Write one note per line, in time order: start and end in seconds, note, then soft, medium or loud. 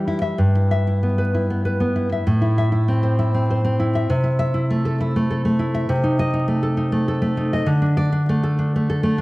0.00 0.35 E3 medium
0.00 0.38 G3 medium
0.00 0.39 G4 medium
0.08 0.21 E4 medium
0.22 0.38 E5 medium
0.38 2.22 G2 medium
0.55 0.86 E4 medium
0.71 0.96 E5 medium
0.87 1.33 E4 medium
1.03 1.49 B3 medium
1.18 1.64 B4 medium
1.34 1.94 E4 medium
1.50 1.79 B3 medium
1.65 2.26 B4 medium
1.80 2.12 B3 medium
1.96 2.26 E4 medium
2.12 2.26 E5 medium
2.27 4.05 A2 medium
2.41 2.71 E4 medium
2.58 2.81 E5 medium
2.72 3.18 E4 medium
2.88 3.33 C4 medium
3.03 3.49 C5 medium
3.19 3.78 E4 medium
3.34 3.63 C4 medium
3.50 4.10 C5 medium
3.65 4.09 C4 medium
3.80 4.09 E4 medium
3.95 4.09 E5 medium
4.10 5.87 C3 medium
4.24 4.53 E4 medium
4.39 4.64 E5 medium
4.54 4.99 E4 medium
4.70 5.15 A3 medium
4.85 5.29 A4 medium
5.00 5.58 E4 medium
5.16 5.44 A3 medium
5.30 5.90 A4 medium
5.45 5.90 A3 medium
5.59 5.90 E4 medium
5.74 5.90 E5 medium
5.89 7.64 C3 loud
6.03 6.32 D#4 medium
6.19 6.44 D#5 loud
6.33 6.76 D#4 medium
6.48 6.91 A3 medium
6.63 7.07 A4 medium
6.77 7.36 D#4 medium
6.92 7.21 A3 medium
7.08 7.68 A4 medium
7.22 7.67 A3 medium
7.37 7.68 D#4 medium
7.53 7.68 D#5 medium
7.66 9.21 D3 loud
7.82 8.11 D4 medium
7.97 8.22 D5 loud
8.12 8.58 D4 medium
8.29 8.75 A3 medium
8.43 8.88 A4 medium
8.59 9.17 D4 medium
8.76 9.02 A3 medium
8.90 9.21 A4 medium
9.03 9.21 A3 medium
9.18 9.21 D4 medium